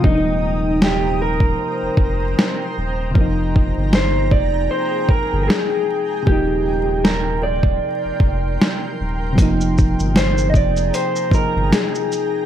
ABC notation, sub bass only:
X:1
M:4/4
L:1/16
Q:"Swing 16ths" 1/4=77
K:Eb
V:1 name="Sub bass" clef=bass
E,,,8 z F,,, F,,,2 z2 E,,,2 | F,,,3 G,,,3 F,,,2 z3 G,,, z4 | E,,,8 z F,,, F,,,2 z2 E,,,2 | F,,,3 G,,,3 F,,,2 z3 G,,, z4 |]